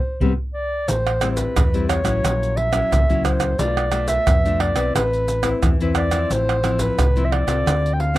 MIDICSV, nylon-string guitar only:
0, 0, Header, 1, 2, 480
1, 0, Start_track
1, 0, Key_signature, 0, "minor"
1, 0, Tempo, 677966
1, 625, Time_signature, 4, 2, 24, 8
1, 5794, End_track
2, 0, Start_track
2, 0, Title_t, "Nylon-string guitar"
2, 0, Program_c, 0, 24
2, 149, Note_on_c, 0, 55, 80
2, 152, Note_on_c, 0, 60, 83
2, 155, Note_on_c, 0, 59, 78
2, 225, Note_off_c, 0, 55, 0
2, 225, Note_off_c, 0, 60, 0
2, 226, Note_off_c, 0, 59, 0
2, 627, Note_on_c, 0, 45, 53
2, 857, Note_on_c, 0, 55, 50
2, 863, Note_on_c, 0, 60, 53
2, 864, Note_on_c, 0, 64, 59
2, 1082, Note_off_c, 0, 45, 0
2, 1087, Note_off_c, 0, 55, 0
2, 1089, Note_off_c, 0, 60, 0
2, 1090, Note_off_c, 0, 64, 0
2, 1230, Note_on_c, 0, 55, 64
2, 1234, Note_on_c, 0, 60, 60
2, 1238, Note_on_c, 0, 64, 63
2, 1430, Note_off_c, 0, 55, 0
2, 1432, Note_off_c, 0, 60, 0
2, 1434, Note_off_c, 0, 64, 0
2, 1443, Note_on_c, 0, 54, 53
2, 1448, Note_on_c, 0, 61, 55
2, 1451, Note_on_c, 0, 64, 57
2, 1581, Note_on_c, 0, 46, 50
2, 1896, Note_off_c, 0, 54, 0
2, 1899, Note_off_c, 0, 61, 0
2, 1900, Note_off_c, 0, 64, 0
2, 1925, Note_on_c, 0, 54, 55
2, 1928, Note_on_c, 0, 61, 61
2, 1929, Note_on_c, 0, 64, 59
2, 2040, Note_off_c, 0, 46, 0
2, 2058, Note_on_c, 0, 46, 56
2, 2138, Note_off_c, 0, 54, 0
2, 2138, Note_off_c, 0, 61, 0
2, 2139, Note_off_c, 0, 64, 0
2, 2189, Note_on_c, 0, 54, 57
2, 2194, Note_on_c, 0, 61, 56
2, 2197, Note_on_c, 0, 64, 67
2, 2509, Note_off_c, 0, 54, 0
2, 2512, Note_off_c, 0, 61, 0
2, 2513, Note_off_c, 0, 64, 0
2, 2518, Note_off_c, 0, 46, 0
2, 2545, Note_on_c, 0, 47, 54
2, 2547, Note_on_c, 0, 57, 50
2, 2548, Note_on_c, 0, 62, 51
2, 2552, Note_on_c, 0, 65, 61
2, 2748, Note_off_c, 0, 57, 0
2, 2749, Note_off_c, 0, 62, 0
2, 2750, Note_off_c, 0, 65, 0
2, 2776, Note_on_c, 0, 57, 58
2, 2780, Note_on_c, 0, 62, 50
2, 2784, Note_on_c, 0, 65, 63
2, 3002, Note_off_c, 0, 47, 0
2, 3006, Note_off_c, 0, 57, 0
2, 3009, Note_off_c, 0, 62, 0
2, 3010, Note_off_c, 0, 65, 0
2, 3022, Note_on_c, 0, 47, 56
2, 3151, Note_on_c, 0, 57, 60
2, 3153, Note_on_c, 0, 62, 66
2, 3158, Note_on_c, 0, 65, 65
2, 3350, Note_off_c, 0, 57, 0
2, 3352, Note_off_c, 0, 62, 0
2, 3353, Note_off_c, 0, 65, 0
2, 3367, Note_on_c, 0, 60, 53
2, 3371, Note_on_c, 0, 64, 58
2, 3372, Note_on_c, 0, 71, 58
2, 3480, Note_off_c, 0, 47, 0
2, 3505, Note_on_c, 0, 57, 48
2, 3818, Note_off_c, 0, 60, 0
2, 3820, Note_off_c, 0, 64, 0
2, 3821, Note_off_c, 0, 71, 0
2, 3844, Note_on_c, 0, 60, 58
2, 3847, Note_on_c, 0, 64, 62
2, 3849, Note_on_c, 0, 71, 57
2, 3961, Note_off_c, 0, 57, 0
2, 3986, Note_on_c, 0, 52, 57
2, 4057, Note_off_c, 0, 60, 0
2, 4058, Note_off_c, 0, 64, 0
2, 4059, Note_off_c, 0, 71, 0
2, 4112, Note_on_c, 0, 60, 63
2, 4117, Note_on_c, 0, 64, 64
2, 4118, Note_on_c, 0, 71, 66
2, 4311, Note_off_c, 0, 60, 0
2, 4312, Note_off_c, 0, 64, 0
2, 4314, Note_off_c, 0, 71, 0
2, 4330, Note_on_c, 0, 53, 56
2, 4333, Note_on_c, 0, 60, 57
2, 4337, Note_on_c, 0, 64, 66
2, 4442, Note_off_c, 0, 52, 0
2, 4469, Note_on_c, 0, 45, 57
2, 4659, Note_off_c, 0, 53, 0
2, 4661, Note_off_c, 0, 60, 0
2, 4663, Note_off_c, 0, 64, 0
2, 4695, Note_on_c, 0, 53, 53
2, 4701, Note_on_c, 0, 60, 60
2, 4702, Note_on_c, 0, 64, 57
2, 4923, Note_off_c, 0, 45, 0
2, 4926, Note_off_c, 0, 53, 0
2, 4927, Note_off_c, 0, 60, 0
2, 4929, Note_off_c, 0, 64, 0
2, 4948, Note_on_c, 0, 45, 55
2, 5069, Note_on_c, 0, 53, 63
2, 5075, Note_on_c, 0, 60, 65
2, 5075, Note_on_c, 0, 64, 67
2, 5269, Note_off_c, 0, 53, 0
2, 5270, Note_off_c, 0, 60, 0
2, 5272, Note_off_c, 0, 64, 0
2, 5290, Note_on_c, 0, 60, 58
2, 5292, Note_on_c, 0, 65, 60
2, 5295, Note_on_c, 0, 69, 66
2, 5402, Note_off_c, 0, 45, 0
2, 5422, Note_on_c, 0, 50, 55
2, 5739, Note_off_c, 0, 60, 0
2, 5739, Note_off_c, 0, 65, 0
2, 5741, Note_off_c, 0, 69, 0
2, 5763, Note_on_c, 0, 60, 56
2, 5767, Note_on_c, 0, 65, 65
2, 5772, Note_on_c, 0, 69, 64
2, 5794, Note_off_c, 0, 50, 0
2, 5794, Note_off_c, 0, 60, 0
2, 5794, Note_off_c, 0, 65, 0
2, 5794, Note_off_c, 0, 69, 0
2, 5794, End_track
0, 0, End_of_file